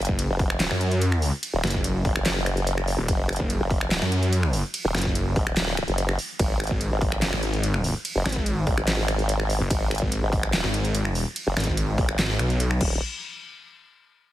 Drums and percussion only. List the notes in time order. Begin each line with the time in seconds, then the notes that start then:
0.02 closed hi-hat
0.05 kick, closed hi-hat
0.19 closed hi-hat, ride
0.39 kick, open hi-hat
0.50 finger snap
0.60 snare, clap, closed hi-hat, ride
0.71 finger snap
0.81 closed hi-hat
0.91 closed hi-hat
1.02 closed hi-hat, ride
1.12 finger snap
1.22 open hi-hat
1.43 closed hi-hat, ride
1.64 finger snap, snare, closed hi-hat
1.67 closed hi-hat
1.70 kick, closed hi-hat
1.84 closed hi-hat, ride
2.05 kick, open hi-hat
2.16 finger snap
2.26 snare, clap, closed hi-hat, ride
2.46 finger snap, closed hi-hat
2.57 closed hi-hat
2.67 closed hi-hat, ride
2.78 finger snap
2.88 open hi-hat
3.08 kick, closed hi-hat, ride
3.29 finger snap, closed hi-hat
3.33 closed hi-hat
3.36 kick, closed hi-hat
3.50 closed hi-hat, ride
3.70 kick, open hi-hat
3.81 finger snap
3.91 snare, clap, closed hi-hat, ride
4.02 finger snap
4.12 closed hi-hat
4.23 closed hi-hat
4.33 closed hi-hat, ride
4.43 finger snap
4.53 open hi-hat
4.74 closed hi-hat, ride
4.95 finger snap, snare, closed hi-hat
4.98 closed hi-hat
5.02 kick, closed hi-hat
5.15 closed hi-hat, ride
5.36 kick, open hi-hat
5.47 finger snap
5.57 snare, clap, closed hi-hat, ride
5.77 finger snap, closed hi-hat
5.88 closed hi-hat
5.98 closed hi-hat, ride
6.09 finger snap
6.19 open hi-hat
6.39 kick, closed hi-hat, ride
6.60 finger snap, closed hi-hat
6.64 closed hi-hat
6.67 kick, closed hi-hat
6.81 closed hi-hat, ride
7.01 kick, open hi-hat
7.12 finger snap
7.22 snare, clap, closed hi-hat, ride
7.33 finger snap
7.43 closed hi-hat
7.54 closed hi-hat
7.63 closed hi-hat, ride
7.74 finger snap
7.84 open hi-hat
8.05 closed hi-hat, ride
8.26 finger snap, snare, closed hi-hat
8.29 closed hi-hat
8.32 kick, closed hi-hat
8.46 closed hi-hat, ride
8.67 kick, open hi-hat
8.78 finger snap
8.88 snare, clap, closed hi-hat, ride
9.08 finger snap, closed hi-hat
9.19 closed hi-hat
9.29 closed hi-hat, ride
9.40 finger snap
9.50 open hi-hat
9.70 kick, closed hi-hat, ride
9.91 finger snap, closed hi-hat
9.95 closed hi-hat
9.98 kick, closed hi-hat
10.12 closed hi-hat, ride
10.33 kick, open hi-hat
10.43 finger snap
10.53 snare, clap, closed hi-hat, ride
10.64 finger snap
10.74 closed hi-hat
10.85 closed hi-hat
10.95 closed hi-hat, ride
11.05 finger snap
11.15 open hi-hat
11.36 closed hi-hat, ride
11.57 finger snap, snare, closed hi-hat
11.60 closed hi-hat
11.64 kick, closed hi-hat
11.77 closed hi-hat, ride
11.98 kick, open hi-hat
12.09 finger snap
12.19 snare, clap, closed hi-hat, ride
12.39 finger snap, closed hi-hat
12.50 closed hi-hat
12.60 closed hi-hat, ride
12.71 finger snap
12.81 kick, crash